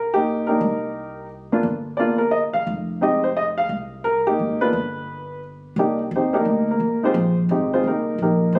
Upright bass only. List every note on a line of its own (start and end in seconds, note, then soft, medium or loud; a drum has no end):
0.00 0.56 C2 medium
0.61 1.60 C2 medium
1.63 2.50 G1 medium
2.54 muted upright bass stroke soft
2.67 3.66 F1 medium
3.69 4.35 C2 medium
4.39 4.71 G#1 medium
4.73 5.73 G1 medium
5.76 6.10 C2 medium
6.11 6.44 D#2 medium
6.45 6.79 D2 medium
6.80 7.14 C2 medium
7.14 7.48 A#1 medium
7.49 7.83 G#1 medium
7.84 8.17 C2 medium
8.18 8.52 A#1 medium
8.52 8.59 D2 medium